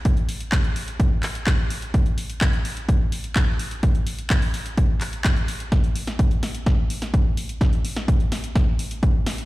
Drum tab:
HH |xxoxxxoxx-oxx-ox|xxoxxxoxx-oxx-ox|xxoxxooxx-oxxxox|xxoxxxoxx-oxx-ox|
CP |----x-----x-x---|----x-------x---|----x-----x-x---|----------------|
SD |----------------|----------------|----------------|o--o--o-o--o----|
BD |o---o---o---o---|o---o---o---o---|o---o---o---o---|o---o---o---o---|

HH |xxoxxxoxx-oxx-ox|
CP |----------------|
SD |o--o--o-o-----o-|
BD |o---o---o---o---|